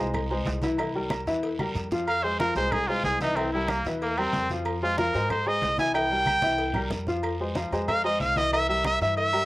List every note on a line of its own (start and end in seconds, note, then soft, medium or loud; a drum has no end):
0.00 0.43 C2 medium
0.00 0.25 G#3 medium
0.00 0.25 G#4 medium
0.00 0.25 C5 medium
0.14 cowbell loud
0.14 high conga soft
0.14 low conga medium
0.14 low agogo medium
0.14 long guiro medium
0.14 claves medium
0.30 0.57 G#3 medium
0.30 0.58 G#4 medium
0.30 0.57 C5 medium
0.30 high conga soft
0.30 low agogo medium
0.45 1.21 C2 medium
0.45 cowbell medium
0.45 high conga medium
0.45 low timbale medium
0.45 short guiro medium
0.62 0.76 E3 medium
0.62 0.77 E4 loud
0.62 0.77 E5 medium
0.62 cowbell medium
0.62 high conga medium
0.62 low agogo medium
0.62 short guiro medium
0.78 0.93 E3 medium
0.78 0.93 E4 medium
0.78 0.93 E5 medium
0.78 cowbell loud
0.78 high conga soft
0.78 low agogo loud
0.78 long guiro medium
0.78 claves medium
0.94 1.22 G3 medium
0.94 1.22 G4 medium
0.94 1.22 A#4 medium
0.94 high conga soft
1.10 cowbell medium
1.10 high conga loud
1.10 low agogo loud
1.10 short guiro medium
1.10 claves medium
1.26 1.71 E2 medium
1.26 1.54 E3 loud
1.26 1.54 E4 medium
1.26 1.54 E5 loud
1.26 low agogo medium
1.26 short guiro medium
1.43 cowbell loud
1.43 high conga soft
1.43 long guiro medium
1.59 1.86 G3 medium
1.59 1.86 G4 medium
1.59 1.86 A#4 medium
1.59 high conga medium
1.59 low agogo medium
1.59 claves medium
1.75 2.50 F2 medium
1.75 cowbell medium
1.75 low conga medium
1.75 low agogo medium
1.75 short guiro medium
1.91 2.05 F3 medium
1.91 2.05 F4 medium
1.91 2.05 F5 loud
1.91 low conga medium
1.91 short guiro medium
2.07 2.25 F5 medium
2.07 cowbell loud
2.07 high conga soft
2.07 low agogo loud
2.07 long guiro medium
2.07 claves medium
2.24 2.37 G#3 medium
2.24 2.37 G#4 medium
2.24 2.39 C5 medium
2.24 2.37 C5 medium
2.24 high conga soft
2.40 2.53 F3 medium
2.40 2.54 F4 medium
2.40 2.55 A#4 medium
2.40 2.54 F5 medium
2.40 cowbell medium
2.40 high conga loud
2.40 low agogo medium
2.40 short guiro medium
2.55 3.01 C2 medium
2.55 2.83 G#3 medium
2.55 2.83 G#4 medium
2.55 2.73 C5 medium
2.55 2.83 C5 medium
2.55 cowbell medium
2.55 low agogo medium
2.55 short guiro medium
2.72 2.89 G#4 medium
2.72 cowbell loud
2.72 high conga soft
2.72 low conga medium
2.72 low agogo loud
2.72 long guiro medium
2.72 claves medium
2.88 3.15 G#3 medium
2.88 3.04 F4 medium
2.88 3.15 G#4 medium
2.88 3.16 C5 medium
2.88 high conga soft
2.88 low agogo medium
3.03 3.79 C2 medium
3.03 3.20 G#4 loud
3.03 cowbell medium
3.03 high conga medium
3.03 low timbale medium
3.03 short guiro medium
3.20 3.34 E3 loud
3.20 3.38 D#4 medium
3.20 3.34 E4 loud
3.20 3.35 E5 loud
3.20 cowbell medium
3.20 high conga medium
3.20 low agogo medium
3.20 short guiro medium
3.36 3.51 E3 medium
3.36 3.52 C4 medium
3.36 3.51 E4 medium
3.36 3.51 E5 medium
3.36 cowbell loud
3.36 high conga soft
3.36 low agogo loud
3.36 long guiro medium
3.36 claves medium
3.52 3.80 G3 medium
3.52 3.71 E4 medium
3.52 3.80 G4 medium
3.52 3.81 A#4 medium
3.52 high conga soft
3.68 3.85 A#3 medium
3.68 cowbell medium
3.68 high conga medium
3.68 low agogo medium
3.68 short guiro medium
3.68 claves medium
3.85 4.30 E2 medium
3.85 4.12 E3 loud
3.85 4.12 E4 medium
3.85 4.12 E5 loud
3.85 low agogo medium
3.85 short guiro medium
4.01 4.20 A#3 medium
4.01 cowbell loud
4.01 high conga soft
4.01 long guiro medium
4.17 4.44 G3 medium
4.17 4.49 C4 loud
4.17 4.44 G4 medium
4.17 4.44 A#4 medium
4.17 high conga soft
4.17 low agogo loud
4.17 claves medium
4.33 5.08 F2 medium
4.33 cowbell medium
4.33 high conga medium
4.33 low timbale medium
4.33 low agogo medium
4.33 short guiro medium
4.49 4.77 F3 loud
4.49 4.77 F4 medium
4.49 4.77 F5 medium
4.49 high conga medium
4.49 short guiro medium
4.65 cowbell loud
4.65 high conga soft
4.65 low agogo loud
4.65 long guiro medium
4.65 claves medium
4.82 4.95 G#3 medium
4.82 4.98 F4 loud
4.82 4.96 G#4 medium
4.82 4.96 C5 medium
4.82 high conga soft
4.97 5.12 F3 medium
4.97 5.12 F4 medium
4.97 5.29 A#4 medium
4.97 5.12 F5 loud
4.97 cowbell medium
4.97 high conga loud
4.97 low agogo medium
4.97 short guiro medium
5.13 5.59 G#2 medium
5.13 5.41 G#3 medium
5.13 5.41 G#4 medium
5.13 5.41 C5 medium
5.13 cowbell medium
5.13 low agogo medium
5.13 short guiro medium
5.30 5.49 C5 medium
5.30 cowbell loud
5.30 high conga soft
5.30 low conga medium
5.30 low agogo loud
5.30 long guiro medium
5.30 claves medium
5.46 5.73 G#3 medium
5.46 5.73 G#4 medium
5.46 5.73 C5 medium
5.46 5.78 D#5 loud
5.46 high conga soft
5.46 low agogo medium
5.62 6.37 C2 medium
5.62 cowbell medium
5.62 high conga medium
5.62 low timbale medium
5.62 short guiro medium
5.78 5.92 E3 medium
5.78 5.92 E4 loud
5.78 5.92 E5 loud
5.78 5.94 G#5 medium
5.78 cowbell medium
5.78 high conga medium
5.78 low agogo medium
5.78 short guiro medium
5.94 6.08 E3 medium
5.94 6.08 E4 medium
5.94 6.08 E5 medium
5.94 6.89 G5 loud
5.94 cowbell loud
5.94 high conga soft
5.94 low agogo loud
5.94 long guiro medium
5.94 claves medium
6.10 6.37 G3 medium
6.10 6.38 G4 medium
6.10 6.38 A#4 medium
6.10 high conga soft
6.26 cowbell medium
6.26 high conga loud
6.26 low agogo medium
6.26 short guiro medium
6.26 claves medium
6.42 6.87 C2 medium
6.42 6.70 E3 medium
6.42 6.70 E4 medium
6.42 6.70 E5 medium
6.42 high conga medium
6.42 low agogo medium
6.42 short guiro medium
6.58 cowbell loud
6.58 long guiro medium
6.74 7.02 G3 medium
6.74 7.02 G4 medium
6.74 7.02 A#4 medium
6.74 low conga loud
6.74 low agogo loud
6.74 claves medium
6.91 7.66 F2 medium
6.91 cowbell medium
6.91 low conga medium
6.91 low agogo medium
6.91 short guiro medium
7.07 7.34 F3 medium
7.07 7.34 F4 loud
7.07 7.34 F5 medium
7.07 low conga medium
7.07 short guiro medium
7.23 cowbell loud
7.23 high conga soft
7.23 low agogo loud
7.23 long guiro medium
7.23 claves medium
7.39 7.53 G#3 medium
7.39 7.53 G#4 medium
7.39 7.54 C5 medium
7.39 high conga soft
7.55 7.69 F3 medium
7.55 7.70 F4 medium
7.55 7.70 F5 medium
7.55 cowbell medium
7.55 high conga medium
7.55 low agogo medium
7.55 short guiro medium
7.71 8.17 F2 medium
7.71 7.99 G#3 medium
7.71 7.99 G#4 medium
7.71 7.99 C5 medium
7.71 cowbell medium
7.71 low agogo medium
7.71 short guiro medium
7.88 8.04 F5 loud
7.88 cowbell loud
7.88 high conga soft
7.88 low conga medium
7.88 low agogo loud
7.88 long guiro medium
7.88 claves medium
8.04 8.31 G#3 medium
8.04 8.31 G#4 medium
8.04 8.31 C5 medium
8.04 8.20 D#5 loud
8.04 high conga soft
8.04 low agogo medium
8.20 8.95 C2 medium
8.20 8.39 F5 loud
8.20 cowbell medium
8.20 high conga medium
8.20 short guiro medium
8.36 8.50 E3 medium
8.36 8.50 E4 loud
8.36 8.52 D#5 loud
8.36 8.50 E5 loud
8.36 cowbell medium
8.36 high conga medium
8.36 low agogo medium
8.36 short guiro medium
8.52 8.66 E3 medium
8.52 8.66 E4 medium
8.52 8.68 E5 loud
8.52 8.66 E5 medium
8.52 cowbell loud
8.52 high conga soft
8.52 low agogo loud
8.52 long guiro medium
8.52 claves medium
8.68 8.95 G3 medium
8.68 8.95 G4 medium
8.68 8.96 A#4 medium
8.68 8.85 E5 loud
8.68 high conga soft
8.84 9.01 E5 loud
8.84 cowbell medium
8.84 high conga loud
8.84 low agogo loud
8.84 short guiro medium
8.84 claves medium
9.01 9.45 G2 medium
9.01 9.28 E3 loud
9.01 9.28 E4 loud
9.01 9.28 E5 loud
9.01 9.17 E5 medium
9.01 low agogo medium
9.01 short guiro medium
9.17 9.45 E5 loud
9.17 cowbell loud
9.17 high conga soft
9.17 long guiro medium
9.33 9.45 G3 medium
9.33 9.45 G4 medium
9.33 9.45 A#4 medium
9.33 high conga soft
9.33 low agogo loud
9.33 claves medium